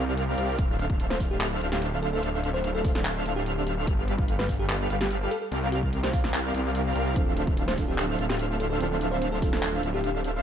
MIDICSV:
0, 0, Header, 1, 7, 480
1, 0, Start_track
1, 0, Key_signature, -1, "minor"
1, 0, Tempo, 410959
1, 684, Time_signature, 4, 2, 24, 8
1, 12173, End_track
2, 0, Start_track
2, 0, Title_t, "Digital synth lead"
2, 0, Program_c, 0, 84
2, 0, Note_on_c, 0, 77, 94
2, 416, Note_off_c, 0, 77, 0
2, 443, Note_on_c, 0, 77, 83
2, 656, Note_off_c, 0, 77, 0
2, 684, Note_on_c, 0, 77, 109
2, 1856, Note_off_c, 0, 77, 0
2, 1884, Note_on_c, 0, 77, 97
2, 2576, Note_off_c, 0, 77, 0
2, 2604, Note_on_c, 0, 77, 103
2, 3776, Note_off_c, 0, 77, 0
2, 3803, Note_on_c, 0, 77, 101
2, 4496, Note_off_c, 0, 77, 0
2, 5724, Note_on_c, 0, 77, 97
2, 6190, Note_off_c, 0, 77, 0
2, 6444, Note_on_c, 0, 77, 104
2, 7616, Note_off_c, 0, 77, 0
2, 7644, Note_on_c, 0, 77, 92
2, 8096, Note_off_c, 0, 77, 0
2, 8124, Note_on_c, 0, 77, 80
2, 8336, Note_off_c, 0, 77, 0
2, 8364, Note_on_c, 0, 77, 106
2, 9536, Note_off_c, 0, 77, 0
2, 9564, Note_on_c, 0, 77, 96
2, 10256, Note_off_c, 0, 77, 0
2, 10284, Note_on_c, 0, 77, 105
2, 11456, Note_off_c, 0, 77, 0
2, 11484, Note_on_c, 0, 77, 103
2, 12173, Note_off_c, 0, 77, 0
2, 12173, End_track
3, 0, Start_track
3, 0, Title_t, "Supersaw synth"
3, 0, Program_c, 1, 81
3, 0, Note_on_c, 1, 60, 82
3, 0, Note_on_c, 1, 67, 76
3, 0, Note_on_c, 1, 70, 76
3, 0, Note_on_c, 1, 74, 74
3, 0, Note_on_c, 1, 77, 88
3, 416, Note_off_c, 1, 60, 0
3, 416, Note_off_c, 1, 67, 0
3, 416, Note_off_c, 1, 70, 0
3, 416, Note_off_c, 1, 74, 0
3, 416, Note_off_c, 1, 77, 0
3, 444, Note_on_c, 1, 60, 73
3, 444, Note_on_c, 1, 67, 70
3, 444, Note_on_c, 1, 70, 72
3, 444, Note_on_c, 1, 74, 67
3, 444, Note_on_c, 1, 77, 84
3, 656, Note_off_c, 1, 60, 0
3, 656, Note_off_c, 1, 67, 0
3, 656, Note_off_c, 1, 70, 0
3, 656, Note_off_c, 1, 74, 0
3, 656, Note_off_c, 1, 77, 0
3, 685, Note_on_c, 1, 62, 91
3, 685, Note_on_c, 1, 69, 85
3, 685, Note_on_c, 1, 72, 86
3, 685, Note_on_c, 1, 76, 85
3, 685, Note_on_c, 1, 77, 100
3, 1857, Note_off_c, 1, 62, 0
3, 1857, Note_off_c, 1, 69, 0
3, 1857, Note_off_c, 1, 72, 0
3, 1857, Note_off_c, 1, 76, 0
3, 1857, Note_off_c, 1, 77, 0
3, 1884, Note_on_c, 1, 69, 82
3, 1884, Note_on_c, 1, 72, 80
3, 1884, Note_on_c, 1, 76, 80
3, 1885, Note_on_c, 1, 62, 88
3, 1885, Note_on_c, 1, 77, 98
3, 2576, Note_off_c, 1, 69, 0
3, 2576, Note_off_c, 1, 72, 0
3, 2576, Note_off_c, 1, 76, 0
3, 2576, Note_off_c, 1, 77, 0
3, 2577, Note_off_c, 1, 62, 0
3, 2603, Note_on_c, 1, 62, 94
3, 2603, Note_on_c, 1, 69, 87
3, 2603, Note_on_c, 1, 76, 89
3, 2604, Note_on_c, 1, 72, 86
3, 2604, Note_on_c, 1, 77, 106
3, 3776, Note_off_c, 1, 62, 0
3, 3776, Note_off_c, 1, 69, 0
3, 3776, Note_off_c, 1, 72, 0
3, 3776, Note_off_c, 1, 76, 0
3, 3776, Note_off_c, 1, 77, 0
3, 3803, Note_on_c, 1, 62, 91
3, 3803, Note_on_c, 1, 69, 79
3, 3803, Note_on_c, 1, 72, 77
3, 3803, Note_on_c, 1, 76, 81
3, 3803, Note_on_c, 1, 77, 96
3, 4496, Note_off_c, 1, 62, 0
3, 4496, Note_off_c, 1, 69, 0
3, 4496, Note_off_c, 1, 72, 0
3, 4496, Note_off_c, 1, 76, 0
3, 4496, Note_off_c, 1, 77, 0
3, 4522, Note_on_c, 1, 67, 84
3, 4522, Note_on_c, 1, 71, 85
3, 4523, Note_on_c, 1, 55, 95
3, 4523, Note_on_c, 1, 69, 85
3, 5695, Note_off_c, 1, 67, 0
3, 5695, Note_off_c, 1, 71, 0
3, 5696, Note_off_c, 1, 55, 0
3, 5696, Note_off_c, 1, 69, 0
3, 5722, Note_on_c, 1, 67, 82
3, 5722, Note_on_c, 1, 69, 80
3, 5722, Note_on_c, 1, 71, 80
3, 5723, Note_on_c, 1, 55, 88
3, 5723, Note_on_c, 1, 77, 99
3, 6189, Note_off_c, 1, 67, 0
3, 6189, Note_off_c, 1, 69, 0
3, 6189, Note_off_c, 1, 71, 0
3, 6190, Note_off_c, 1, 55, 0
3, 6190, Note_off_c, 1, 77, 0
3, 6442, Note_on_c, 1, 70, 86
3, 6443, Note_on_c, 1, 60, 94
3, 6443, Note_on_c, 1, 67, 84
3, 6443, Note_on_c, 1, 74, 84
3, 6443, Note_on_c, 1, 77, 104
3, 7615, Note_off_c, 1, 60, 0
3, 7615, Note_off_c, 1, 67, 0
3, 7615, Note_off_c, 1, 70, 0
3, 7615, Note_off_c, 1, 74, 0
3, 7615, Note_off_c, 1, 77, 0
3, 7643, Note_on_c, 1, 67, 74
3, 7643, Note_on_c, 1, 70, 77
3, 7643, Note_on_c, 1, 74, 76
3, 7643, Note_on_c, 1, 77, 92
3, 7644, Note_on_c, 1, 60, 83
3, 8096, Note_off_c, 1, 60, 0
3, 8096, Note_off_c, 1, 67, 0
3, 8096, Note_off_c, 1, 70, 0
3, 8096, Note_off_c, 1, 74, 0
3, 8096, Note_off_c, 1, 77, 0
3, 8123, Note_on_c, 1, 60, 74
3, 8123, Note_on_c, 1, 67, 70
3, 8123, Note_on_c, 1, 70, 69
3, 8123, Note_on_c, 1, 74, 69
3, 8123, Note_on_c, 1, 77, 80
3, 8336, Note_off_c, 1, 60, 0
3, 8336, Note_off_c, 1, 67, 0
3, 8336, Note_off_c, 1, 70, 0
3, 8336, Note_off_c, 1, 74, 0
3, 8336, Note_off_c, 1, 77, 0
3, 8363, Note_on_c, 1, 69, 85
3, 8363, Note_on_c, 1, 72, 84
3, 8363, Note_on_c, 1, 76, 87
3, 8363, Note_on_c, 1, 77, 101
3, 8364, Note_on_c, 1, 62, 95
3, 9536, Note_off_c, 1, 62, 0
3, 9536, Note_off_c, 1, 69, 0
3, 9536, Note_off_c, 1, 72, 0
3, 9536, Note_off_c, 1, 76, 0
3, 9536, Note_off_c, 1, 77, 0
3, 9565, Note_on_c, 1, 62, 88
3, 9565, Note_on_c, 1, 69, 81
3, 9565, Note_on_c, 1, 72, 82
3, 9565, Note_on_c, 1, 76, 82
3, 9565, Note_on_c, 1, 77, 98
3, 10256, Note_off_c, 1, 72, 0
3, 10256, Note_off_c, 1, 76, 0
3, 10257, Note_off_c, 1, 62, 0
3, 10257, Note_off_c, 1, 69, 0
3, 10257, Note_off_c, 1, 77, 0
3, 10284, Note_on_c, 1, 62, 94
3, 10284, Note_on_c, 1, 69, 88
3, 10284, Note_on_c, 1, 72, 85
3, 10284, Note_on_c, 1, 76, 88
3, 10284, Note_on_c, 1, 77, 101
3, 11456, Note_off_c, 1, 62, 0
3, 11456, Note_off_c, 1, 69, 0
3, 11456, Note_off_c, 1, 72, 0
3, 11456, Note_off_c, 1, 76, 0
3, 11456, Note_off_c, 1, 77, 0
3, 11484, Note_on_c, 1, 62, 90
3, 11484, Note_on_c, 1, 69, 81
3, 11484, Note_on_c, 1, 72, 81
3, 11484, Note_on_c, 1, 76, 83
3, 11484, Note_on_c, 1, 77, 99
3, 12173, Note_off_c, 1, 62, 0
3, 12173, Note_off_c, 1, 69, 0
3, 12173, Note_off_c, 1, 72, 0
3, 12173, Note_off_c, 1, 76, 0
3, 12173, Note_off_c, 1, 77, 0
3, 12173, End_track
4, 0, Start_track
4, 0, Title_t, "FM electric piano"
4, 0, Program_c, 2, 5
4, 1289, Note_on_c, 2, 72, 91
4, 1401, Note_off_c, 2, 72, 0
4, 1529, Note_on_c, 2, 67, 88
4, 1603, Note_off_c, 2, 67, 0
4, 1644, Note_on_c, 2, 67, 75
4, 1724, Note_off_c, 2, 67, 0
4, 2008, Note_on_c, 2, 67, 91
4, 2121, Note_off_c, 2, 67, 0
4, 2364, Note_on_c, 2, 69, 88
4, 2443, Note_off_c, 2, 69, 0
4, 2488, Note_on_c, 2, 69, 77
4, 2562, Note_off_c, 2, 69, 0
4, 2967, Note_on_c, 2, 72, 90
4, 3183, Note_off_c, 2, 72, 0
4, 3207, Note_on_c, 2, 69, 96
4, 3423, Note_off_c, 2, 69, 0
4, 3447, Note_on_c, 2, 69, 89
4, 3903, Note_off_c, 2, 69, 0
4, 3927, Note_on_c, 2, 67, 94
4, 4407, Note_off_c, 2, 67, 0
4, 5126, Note_on_c, 2, 71, 94
4, 5240, Note_off_c, 2, 71, 0
4, 5367, Note_on_c, 2, 67, 92
4, 5442, Note_off_c, 2, 67, 0
4, 5482, Note_on_c, 2, 67, 78
4, 5562, Note_off_c, 2, 67, 0
4, 5847, Note_on_c, 2, 67, 92
4, 5961, Note_off_c, 2, 67, 0
4, 6203, Note_on_c, 2, 69, 90
4, 6283, Note_off_c, 2, 69, 0
4, 6326, Note_on_c, 2, 69, 76
4, 6401, Note_off_c, 2, 69, 0
4, 6682, Note_on_c, 2, 67, 91
4, 6804, Note_off_c, 2, 67, 0
4, 7047, Note_on_c, 2, 72, 94
4, 7140, Note_off_c, 2, 72, 0
4, 7163, Note_on_c, 2, 77, 92
4, 7643, Note_off_c, 2, 77, 0
4, 8967, Note_on_c, 2, 72, 92
4, 9080, Note_off_c, 2, 72, 0
4, 9207, Note_on_c, 2, 67, 86
4, 9282, Note_off_c, 2, 67, 0
4, 9324, Note_on_c, 2, 67, 78
4, 9403, Note_off_c, 2, 67, 0
4, 9687, Note_on_c, 2, 67, 92
4, 9800, Note_off_c, 2, 67, 0
4, 10044, Note_on_c, 2, 69, 86
4, 10124, Note_off_c, 2, 69, 0
4, 10167, Note_on_c, 2, 69, 78
4, 10242, Note_off_c, 2, 69, 0
4, 10647, Note_on_c, 2, 72, 94
4, 10863, Note_off_c, 2, 72, 0
4, 10888, Note_on_c, 2, 69, 97
4, 11103, Note_off_c, 2, 69, 0
4, 11128, Note_on_c, 2, 69, 96
4, 11583, Note_off_c, 2, 69, 0
4, 11609, Note_on_c, 2, 67, 91
4, 12088, Note_off_c, 2, 67, 0
4, 12173, End_track
5, 0, Start_track
5, 0, Title_t, "Felt piano"
5, 0, Program_c, 3, 0
5, 8340, Note_on_c, 3, 53, 92
5, 8352, Note_on_c, 3, 60, 82
5, 8363, Note_on_c, 3, 62, 80
5, 8386, Note_on_c, 3, 69, 97
5, 8586, Control_c, 3, 64, 127
5, 9042, Note_off_c, 3, 53, 0
5, 9050, Note_off_c, 3, 60, 0
5, 9056, Note_off_c, 3, 62, 0
5, 9060, Note_on_c, 3, 53, 87
5, 9067, Note_off_c, 3, 69, 0
5, 9072, Note_on_c, 3, 60, 80
5, 9083, Note_on_c, 3, 62, 79
5, 9107, Note_on_c, 3, 69, 95
5, 10242, Note_off_c, 3, 53, 0
5, 10250, Note_off_c, 3, 60, 0
5, 10256, Note_off_c, 3, 62, 0
5, 10259, Note_on_c, 3, 53, 91
5, 10268, Note_off_c, 3, 69, 0
5, 10271, Note_on_c, 3, 60, 83
5, 10283, Note_on_c, 3, 62, 79
5, 10306, Note_on_c, 3, 69, 98
5, 10963, Note_off_c, 3, 53, 0
5, 10970, Note_off_c, 3, 60, 0
5, 10976, Note_off_c, 3, 62, 0
5, 10980, Note_on_c, 3, 53, 86
5, 10987, Note_off_c, 3, 69, 0
5, 10992, Note_on_c, 3, 60, 80
5, 11004, Note_on_c, 3, 62, 81
5, 11027, Note_on_c, 3, 69, 93
5, 12164, Note_off_c, 3, 53, 0
5, 12170, Note_off_c, 3, 60, 0
5, 12173, Note_off_c, 3, 62, 0
5, 12173, Note_off_c, 3, 69, 0
5, 12173, End_track
6, 0, Start_track
6, 0, Title_t, "Detuned saw bass"
6, 0, Program_c, 4, 39
6, 0, Note_on_c, 4, 36, 101
6, 421, Note_off_c, 4, 36, 0
6, 444, Note_on_c, 4, 36, 94
6, 661, Note_off_c, 4, 36, 0
6, 684, Note_on_c, 4, 26, 98
6, 1861, Note_off_c, 4, 26, 0
6, 1884, Note_on_c, 4, 26, 102
6, 2581, Note_off_c, 4, 26, 0
6, 2604, Note_on_c, 4, 26, 99
6, 3781, Note_off_c, 4, 26, 0
6, 3803, Note_on_c, 4, 26, 102
6, 4523, Note_on_c, 4, 31, 99
6, 4540, Note_off_c, 4, 26, 0
6, 5700, Note_off_c, 4, 31, 0
6, 5723, Note_on_c, 4, 31, 102
6, 6166, Note_off_c, 4, 31, 0
6, 6444, Note_on_c, 4, 36, 99
6, 7621, Note_off_c, 4, 36, 0
6, 7644, Note_on_c, 4, 36, 97
6, 8101, Note_off_c, 4, 36, 0
6, 8125, Note_on_c, 4, 36, 100
6, 8364, Note_on_c, 4, 26, 100
6, 8382, Note_off_c, 4, 36, 0
6, 9541, Note_off_c, 4, 26, 0
6, 9563, Note_on_c, 4, 26, 103
6, 10261, Note_off_c, 4, 26, 0
6, 10284, Note_on_c, 4, 26, 98
6, 11461, Note_off_c, 4, 26, 0
6, 11484, Note_on_c, 4, 26, 103
6, 12173, Note_off_c, 4, 26, 0
6, 12173, End_track
7, 0, Start_track
7, 0, Title_t, "Drums"
7, 204, Note_on_c, 9, 42, 79
7, 320, Note_off_c, 9, 42, 0
7, 444, Note_on_c, 9, 42, 67
7, 561, Note_off_c, 9, 42, 0
7, 684, Note_on_c, 9, 36, 123
7, 684, Note_on_c, 9, 42, 77
7, 800, Note_off_c, 9, 42, 0
7, 801, Note_off_c, 9, 36, 0
7, 924, Note_on_c, 9, 42, 60
7, 1041, Note_off_c, 9, 42, 0
7, 1048, Note_on_c, 9, 36, 104
7, 1165, Note_off_c, 9, 36, 0
7, 1165, Note_on_c, 9, 42, 75
7, 1282, Note_off_c, 9, 42, 0
7, 1289, Note_on_c, 9, 38, 64
7, 1404, Note_on_c, 9, 36, 62
7, 1404, Note_on_c, 9, 46, 91
7, 1406, Note_off_c, 9, 38, 0
7, 1521, Note_off_c, 9, 36, 0
7, 1521, Note_off_c, 9, 46, 0
7, 1644, Note_on_c, 9, 39, 124
7, 1644, Note_on_c, 9, 42, 78
7, 1761, Note_off_c, 9, 39, 0
7, 1761, Note_off_c, 9, 42, 0
7, 1884, Note_on_c, 9, 42, 64
7, 2001, Note_off_c, 9, 42, 0
7, 2008, Note_on_c, 9, 38, 78
7, 2124, Note_on_c, 9, 42, 76
7, 2125, Note_off_c, 9, 38, 0
7, 2241, Note_off_c, 9, 42, 0
7, 2364, Note_on_c, 9, 42, 62
7, 2481, Note_off_c, 9, 42, 0
7, 2604, Note_on_c, 9, 42, 79
7, 2721, Note_off_c, 9, 42, 0
7, 2844, Note_on_c, 9, 42, 62
7, 2961, Note_off_c, 9, 42, 0
7, 3084, Note_on_c, 9, 42, 74
7, 3201, Note_off_c, 9, 42, 0
7, 3324, Note_on_c, 9, 36, 108
7, 3324, Note_on_c, 9, 46, 89
7, 3441, Note_off_c, 9, 36, 0
7, 3441, Note_off_c, 9, 46, 0
7, 3448, Note_on_c, 9, 38, 66
7, 3564, Note_on_c, 9, 39, 116
7, 3564, Note_on_c, 9, 42, 75
7, 3565, Note_off_c, 9, 38, 0
7, 3681, Note_off_c, 9, 39, 0
7, 3681, Note_off_c, 9, 42, 0
7, 3804, Note_on_c, 9, 42, 64
7, 3921, Note_off_c, 9, 42, 0
7, 4044, Note_on_c, 9, 42, 77
7, 4161, Note_off_c, 9, 42, 0
7, 4284, Note_on_c, 9, 42, 64
7, 4401, Note_off_c, 9, 42, 0
7, 4523, Note_on_c, 9, 36, 119
7, 4523, Note_on_c, 9, 42, 81
7, 4640, Note_off_c, 9, 36, 0
7, 4640, Note_off_c, 9, 42, 0
7, 4764, Note_on_c, 9, 42, 65
7, 4881, Note_off_c, 9, 42, 0
7, 4887, Note_on_c, 9, 36, 102
7, 5003, Note_on_c, 9, 42, 76
7, 5004, Note_off_c, 9, 36, 0
7, 5120, Note_off_c, 9, 42, 0
7, 5128, Note_on_c, 9, 38, 67
7, 5244, Note_on_c, 9, 36, 58
7, 5244, Note_on_c, 9, 46, 95
7, 5245, Note_off_c, 9, 38, 0
7, 5360, Note_off_c, 9, 36, 0
7, 5361, Note_off_c, 9, 46, 0
7, 5485, Note_on_c, 9, 39, 110
7, 5485, Note_on_c, 9, 42, 79
7, 5601, Note_off_c, 9, 39, 0
7, 5601, Note_off_c, 9, 42, 0
7, 5725, Note_on_c, 9, 42, 66
7, 5842, Note_off_c, 9, 42, 0
7, 5848, Note_on_c, 9, 38, 80
7, 5965, Note_off_c, 9, 38, 0
7, 5965, Note_on_c, 9, 42, 76
7, 6082, Note_off_c, 9, 42, 0
7, 6205, Note_on_c, 9, 42, 66
7, 6321, Note_off_c, 9, 42, 0
7, 6444, Note_on_c, 9, 42, 81
7, 6561, Note_off_c, 9, 42, 0
7, 6685, Note_on_c, 9, 42, 67
7, 6801, Note_off_c, 9, 42, 0
7, 6808, Note_on_c, 9, 36, 58
7, 6924, Note_off_c, 9, 36, 0
7, 6924, Note_on_c, 9, 42, 80
7, 7041, Note_off_c, 9, 42, 0
7, 7048, Note_on_c, 9, 38, 65
7, 7164, Note_on_c, 9, 36, 103
7, 7164, Note_on_c, 9, 46, 95
7, 7165, Note_off_c, 9, 38, 0
7, 7281, Note_off_c, 9, 36, 0
7, 7281, Note_off_c, 9, 46, 0
7, 7288, Note_on_c, 9, 38, 65
7, 7404, Note_off_c, 9, 38, 0
7, 7404, Note_on_c, 9, 39, 118
7, 7404, Note_on_c, 9, 42, 82
7, 7521, Note_off_c, 9, 39, 0
7, 7521, Note_off_c, 9, 42, 0
7, 7643, Note_on_c, 9, 42, 70
7, 7760, Note_off_c, 9, 42, 0
7, 7884, Note_on_c, 9, 42, 80
7, 8001, Note_off_c, 9, 42, 0
7, 8124, Note_on_c, 9, 42, 68
7, 8241, Note_off_c, 9, 42, 0
7, 8364, Note_on_c, 9, 36, 121
7, 8365, Note_on_c, 9, 42, 85
7, 8481, Note_off_c, 9, 36, 0
7, 8481, Note_off_c, 9, 42, 0
7, 8604, Note_on_c, 9, 42, 71
7, 8721, Note_off_c, 9, 42, 0
7, 8728, Note_on_c, 9, 36, 106
7, 8844, Note_on_c, 9, 42, 86
7, 8845, Note_off_c, 9, 36, 0
7, 8961, Note_off_c, 9, 42, 0
7, 8969, Note_on_c, 9, 38, 65
7, 9084, Note_on_c, 9, 36, 64
7, 9084, Note_on_c, 9, 46, 96
7, 9085, Note_off_c, 9, 38, 0
7, 9201, Note_off_c, 9, 36, 0
7, 9201, Note_off_c, 9, 46, 0
7, 9325, Note_on_c, 9, 39, 120
7, 9325, Note_on_c, 9, 42, 80
7, 9441, Note_off_c, 9, 39, 0
7, 9441, Note_off_c, 9, 42, 0
7, 9564, Note_on_c, 9, 42, 71
7, 9681, Note_off_c, 9, 42, 0
7, 9688, Note_on_c, 9, 38, 81
7, 9804, Note_on_c, 9, 42, 83
7, 9805, Note_off_c, 9, 38, 0
7, 9921, Note_off_c, 9, 42, 0
7, 10044, Note_on_c, 9, 42, 69
7, 10161, Note_off_c, 9, 42, 0
7, 10284, Note_on_c, 9, 42, 88
7, 10401, Note_off_c, 9, 42, 0
7, 10525, Note_on_c, 9, 42, 68
7, 10642, Note_off_c, 9, 42, 0
7, 10765, Note_on_c, 9, 42, 86
7, 10882, Note_off_c, 9, 42, 0
7, 11004, Note_on_c, 9, 36, 108
7, 11005, Note_on_c, 9, 46, 95
7, 11121, Note_off_c, 9, 36, 0
7, 11122, Note_off_c, 9, 46, 0
7, 11130, Note_on_c, 9, 38, 62
7, 11246, Note_on_c, 9, 39, 127
7, 11246, Note_on_c, 9, 42, 88
7, 11247, Note_off_c, 9, 38, 0
7, 11362, Note_off_c, 9, 39, 0
7, 11362, Note_off_c, 9, 42, 0
7, 11486, Note_on_c, 9, 42, 74
7, 11602, Note_off_c, 9, 42, 0
7, 11725, Note_on_c, 9, 42, 86
7, 11842, Note_off_c, 9, 42, 0
7, 11965, Note_on_c, 9, 42, 70
7, 12082, Note_off_c, 9, 42, 0
7, 12173, End_track
0, 0, End_of_file